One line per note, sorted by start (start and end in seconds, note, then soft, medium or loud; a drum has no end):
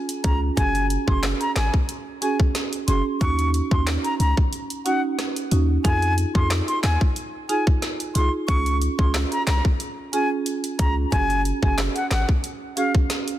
0.00 downlifter medium
0.09 closed hi-hat medium
0.24 0.51 C#2 loud
0.24 0.41 C#4 medium
0.24 0.41 F4 medium
0.24 0.41 G#4 medium
0.24 0.40 A#5 medium
0.24 kick medium
0.24 closed hi-hat medium
0.57 0.97 F#1 loud
0.57 0.73 C#4 medium
0.57 0.74 F#4 medium
0.57 0.74 G#4 loud
0.57 0.86 G#5 loud
0.57 kick loud
0.57 closed hi-hat medium
0.75 closed hi-hat soft
0.90 closed hi-hat medium
1.07 1.34 F#1 loud
1.07 1.22 C#4 medium
1.07 1.22 F#4 medium
1.07 1.22 G#4 medium
1.07 1.21 C6 medium
1.07 kick medium
1.23 cross-stick medium
1.23 snare loud
1.23 clap medium
1.23 closed hi-hat medium
1.41 1.54 A#5 medium
1.41 closed hi-hat medium
1.56 1.70 G#1 medium
1.56 1.72 G#5 medium
1.56 snare loud
1.56 clap medium
1.56 closed hi-hat medium
1.74 kick medium
1.89 closed hi-hat medium
2.22 2.38 C#4 medium
2.22 2.39 F#4 medium
2.22 2.39 G#4 medium
2.22 2.38 G#5 medium
2.22 closed hi-hat medium
2.40 kick loud
2.55 snare medium
2.55 closed hi-hat medium
2.73 closed hi-hat medium
2.88 3.02 F#1 medium
2.88 3.04 C#4 medium
2.88 3.04 F#4 medium
2.88 3.05 G#4 medium
2.88 3.03 C6 medium
2.88 closed hi-hat medium
3.21 3.61 D#2 loud
3.21 3.37 C#4 medium
3.21 3.37 D#4 medium
3.21 3.38 F#4 loud
3.21 3.50 C#6 loud
3.21 kick loud
3.21 closed hi-hat medium
3.39 closed hi-hat medium
3.54 closed hi-hat medium
3.71 3.98 D#2 loud
3.71 3.86 C#4 medium
3.71 3.86 D#4 medium
3.71 3.86 F#4 medium
3.71 3.85 C6 medium
3.71 kick medium
3.87 snare loud
3.87 clap medium
3.87 closed hi-hat medium
4.04 4.18 A#5 medium
4.04 closed hi-hat medium
4.20 4.34 C#2 medium
4.20 4.35 A#5 medium
4.20 closed hi-hat medium
4.37 kick medium
4.53 closed hi-hat medium
4.70 closed hi-hat medium
4.86 5.02 C#4 medium
4.86 5.02 D#4 medium
4.86 5.02 F#4 medium
4.86 5.01 F#5 medium
4.86 closed hi-hat medium
5.19 cross-stick medium
5.19 snare medium
5.19 closed hi-hat medium
5.36 closed hi-hat medium
5.51 5.78 D#2 loud
5.51 5.68 C#4 medium
5.51 5.68 D#4 medium
5.51 5.68 F#4 medium
5.51 closed hi-hat medium
5.84 6.25 F2 loud
5.84 6.01 D#4 medium
5.84 6.01 F4 medium
5.84 6.01 G#4 loud
5.84 6.14 G#5 loud
5.84 kick loud
5.84 closed hi-hat medium
6.02 closed hi-hat soft
6.18 closed hi-hat medium
6.35 6.61 F2 loud
6.35 6.50 D#4 medium
6.35 6.50 F4 medium
6.35 6.50 G#4 medium
6.35 6.49 C6 medium
6.35 kick medium
6.50 cross-stick medium
6.50 snare loud
6.50 clap medium
6.50 closed hi-hat medium
6.68 6.82 C6 medium
6.68 closed hi-hat medium
6.83 6.97 D#2 medium
6.83 6.99 G#5 medium
6.83 snare loud
6.83 clap medium
6.83 closed hi-hat medium
7.01 kick medium
7.16 closed hi-hat medium
7.49 7.66 D#4 medium
7.49 7.66 F4 medium
7.49 7.66 G#4 medium
7.49 7.65 G#5 medium
7.49 closed hi-hat medium
7.67 kick loud
7.82 snare medium
7.82 closed hi-hat medium
8.00 closed hi-hat medium
8.15 8.29 C2 loud
8.15 8.32 D#4 medium
8.15 8.32 F4 medium
8.15 8.32 G#4 medium
8.15 8.31 C6 medium
8.15 closed hi-hat medium
8.48 8.89 C#2 loud
8.48 8.65 C#4 loud
8.48 8.65 F4 medium
8.48 8.65 G#4 loud
8.48 8.77 C#6 loud
8.48 kick loud
8.48 closed hi-hat medium
8.66 closed hi-hat soft
8.82 closed hi-hat medium
8.99 9.25 C#2 loud
8.99 9.13 C#4 medium
8.99 9.13 F4 medium
8.99 9.14 G#4 medium
8.99 9.13 C6 medium
8.99 kick loud
9.14 cross-stick medium
9.14 snare loud
9.14 clap medium
9.14 closed hi-hat medium
9.32 9.46 A#5 medium
9.32 closed hi-hat medium
9.47 9.61 C2 loud
9.47 9.63 A#5 medium
9.47 snare loud
9.47 clap medium
9.47 closed hi-hat medium
9.65 kick loud
9.80 closed hi-hat medium
10.13 10.30 C#4 medium
10.13 10.30 F4 medium
10.13 10.30 G#4 medium
10.13 10.29 G#5 medium
10.13 closed hi-hat medium
10.46 closed hi-hat medium
10.64 closed hi-hat medium
10.79 11.05 C#2 loud
10.79 10.95 C#4 medium
10.79 10.96 F4 medium
10.79 10.96 G#4 medium
10.79 10.95 A#5 medium
10.79 kick medium
10.79 closed hi-hat medium
11.12 11.52 F#1 loud
11.12 11.28 C#4 loud
11.12 11.29 F#4 medium
11.12 11.29 G#4 loud
11.12 11.41 G#5 loud
11.12 kick loud
11.12 closed hi-hat medium
11.30 closed hi-hat soft
11.45 closed hi-hat medium
11.62 11.89 F#1 loud
11.62 11.77 C#4 medium
11.62 11.77 F#4 medium
11.62 11.77 G#4 medium
11.62 11.76 G#5 medium
11.62 kick loud
11.78 cross-stick medium
11.78 snare loud
11.78 clap medium
11.78 closed hi-hat medium
11.95 12.09 F#5 medium
11.95 closed hi-hat medium
12.11 12.25 G#1 loud
12.11 12.26 F#5 medium
12.11 snare loud
12.11 clap medium
12.11 closed hi-hat medium
12.29 kick medium
12.44 closed hi-hat medium
12.77 12.93 C#4 medium
12.77 12.93 F#4 medium
12.77 12.94 G#4 medium
12.77 12.92 F5 medium
12.77 closed hi-hat medium
12.95 kick loud
13.10 snare medium
13.10 closed hi-hat medium
13.28 closed hi-hat medium